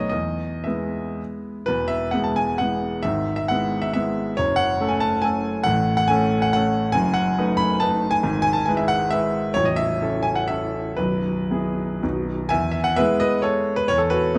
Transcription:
Already playing: B1 A3 B3 D#4 C#5 D#5
0.09 E2 D#5
0.64 G#3 B3 E4 E5
1.66 E1 E2 B4
1.88 E5
2.11 G#3 B3 E4 F#5
2.24 A5
2.36 G#5
2.58 G#3 B3 E4 F#5
3.03 G#1 G#2 E5
3.36 E5
3.48 G#3 B3 E4 F#5
3.82 E5
3.94 G#3 B3 E4 E5
4.37 F#1 F#2 C#5
4.56 F#5
4.80 A3 C#4 A4
4.89 G#5
5.00 A5
5.22 A3 C#4 A4 G#5
5.64 A1 A2 F#5
5.97 F#5
6.08 A3 C#4 A4 G#5
6.42 F#5
6.53 A3 C#4 A4 F#5
6.92 F#1 F#2 G#5
7.14 F#5
7.38 A3 D#4 B4
7.57 B5
7.80 A3 D#4 B4 A5
8.11 G#5
8.23 G#1 G#2
8.42 G#5
8.53 A5
8.66 G#3 E4 B4 G#5
8.77 E5
8.88 F#5
9.11 G#3 E4 B4 E5
9.54 A0 A1 C#5
9.65 D#5
9.76 E5
10.01 C#4 E4 A4
10.23 G#5
10.35 F#5
10.48 C#4 E4 A4 E5
10.96 B0 B1 B4
11.51 B3 E4 G#4
12.03 B0 B1 B3 D#4 F#4
12.49 E2 E5 G#5
12.72 E5
12.84 F#5
12.96 G#3 B3 E4 B4 E5
13.20 B4 D#5
13.42 A4 C#5
13.76 B4
13.88 E2 C#5
13.98 A4
14.10 F#4 B4
14.35 A3 B3

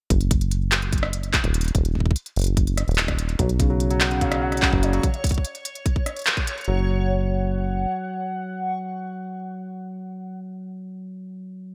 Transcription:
0.10 F#1, kick, closed hi-hat
0.21 closed hi-hat
0.31 kick, closed hi-hat
0.41 closed hi-hat
0.51 closed hi-hat
0.72 cross-stick, clap, closed hi-hat
0.82 closed hi-hat
0.93 kick, closed hi-hat
0.98 closed hi-hat
1.03 cross-stick
1.13 closed hi-hat
1.23 closed hi-hat
1.34 kick, clap, closed hi-hat
1.44 D#1, kick, closed hi-hat
1.54 closed hi-hat
1.61 closed hi-hat
1.64 closed hi-hat
1.68 closed hi-hat
1.75 D#1, kick, closed hi-hat
1.85 closed hi-hat
1.95 kick
2.00 kick
2.06 kick
2.11 kick
2.16 closed hi-hat
2.26 closed hi-hat
2.36 F#1, closed hi-hat
2.39 closed hi-hat
2.41 closed hi-hat
2.44 closed hi-hat
2.57 kick, closed hi-hat
2.67 closed hi-hat
2.77 cross-stick, closed hi-hat
2.88 D#1, closed hi-hat
2.91 closed hi-hat
2.95 clap, closed hi-hat
2.98 closed hi-hat
3.08 kick, cross-stick, closed hi-hat
3.19 closed hi-hat
3.29 closed hi-hat
3.39 B1 F#3 C#5, kick, closed hi-hat
3.49 closed hi-hat
3.60 C#3, kick, closed hi-hat
3.70 F#3
3.80 closed hi-hat
3.90 F#3, closed hi-hat
4.01 F#5, cross-stick, clap, closed hi-hat
4.11 C#3, closed hi-hat
4.21 F#3 F5, kick, closed hi-hat
4.32 cross-stick, closed hi-hat
4.42 F#3 F#5
4.52 cross-stick, closed hi-hat
4.57 closed hi-hat
4.62 C#3, kick, clap
4.73 F#1 F#3, kick
4.83 D5, closed hi-hat
4.93 F#3, closed hi-hat
5.03 kick, closed hi-hat
5.14 closed hi-hat
5.24 kick, closed hi-hat
5.27 closed hi-hat
5.29 kick, closed hi-hat
5.32 closed hi-hat
5.34 kick, closed hi-hat
5.45 closed hi-hat
5.55 closed hi-hat
5.65 closed hi-hat
5.75 closed hi-hat
5.86 kick, closed hi-hat
5.96 kick
6.06 cross-stick, closed hi-hat
6.16 closed hi-hat
6.19 closed hi-hat
6.22 closed hi-hat
6.24 clap, closed hi-hat
6.27 closed hi-hat
6.37 kick, closed hi-hat
6.47 closed hi-hat
6.58 closed hi-hat
6.61 closed hi-hat
6.64 F#1 F#3 F#5, closed hi-hat

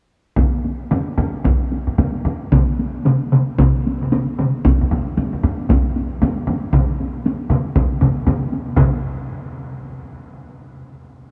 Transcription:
0.36 taiko, taiko low-mid, taiko high
0.53 taiko high
0.64 taiko high
0.91 taiko low-mid, taiko high
1.07 taiko high
1.18 taiko low-mid, taiko high
1.34 taiko high
1.45 taiko, taiko low-mid, taiko high
1.62 taiko high
1.72 taiko high
1.87 taiko low-mid, taiko high
1.98 taiko low-mid, taiko high
2.15 taiko high
2.25 taiko low-mid, taiko high
2.42 taiko high
2.52 taiko, taiko mid, taiko high
2.69 taiko high
2.79 taiko high
3.05 taiko mid, taiko high
3.22 taiko high
3.32 taiko mid, taiko high
3.49 taiko high
3.58 taiko, taiko mid, taiko high
3.76 taiko high
3.87 taiko high
4.01 taiko mid, taiko high
4.12 taiko mid, taiko high
4.28 taiko high
4.39 taiko mid, taiko high
4.55 taiko high
4.65 taiko, taiko low-mid, taiko high
4.81 taiko low-mid, taiko high
4.91 taiko low-mid, taiko high
5.17 taiko low-mid, taiko high
5.33 taiko low-mid, taiko high
5.44 taiko low-mid, taiko high
5.60 taiko high
5.70 taiko, taiko low-mid, taiko high
5.86 taiko high
5.96 taiko high
6.13 taiko high
6.22 taiko low-mid, taiko high
6.39 taiko high
6.47 taiko low-mid, taiko high
6.64 taiko high
6.73 taiko, taiko low-mid, taiko mid, taiko high
6.90 taiko high
7.00 taiko high
7.26 taiko high
7.41 taiko high
7.50 taiko low-mid, taiko mid, taiko high
7.66 taiko high
7.76 taiko, taiko low-mid, taiko mid, taiko high
7.92 taiko high
8.01 taiko low-mid, taiko mid, taiko high
8.17 taiko high
8.27 taiko low-mid, taiko mid, taiko high
8.42 taiko high
8.52 taiko high
8.67 taiko high
8.77 taiko, taiko low-mid, taiko mid, taiko high

